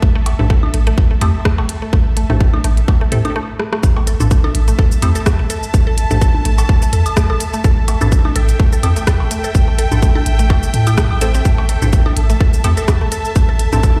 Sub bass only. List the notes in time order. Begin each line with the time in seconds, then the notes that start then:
0.02 A1
0.39 A1
0.74 A1
0.98 A1
1.21 E2
1.58 A1
1.93 A1
2.30 A1
2.64 A1
2.88 A1
3.12 A2
3.83 A1
4.20 A1
4.55 A1
4.79 A1
5.02 E2
5.39 A1
5.74 A1
6.11 A1
6.45 A1
6.69 A1
6.93 E2
7.30 A1
7.64 A1
8.01 A1
8.36 A1
8.60 A1
8.83 E2
9.20 A1
9.55 A1
9.92 A1
10.26 A1
10.50 G1
10.74 A2
11.11 A1
11.45 A1
11.82 A1
12.17 A1
12.41 A1
12.64 E2
13.01 A1
13.36 A1
13.73 A1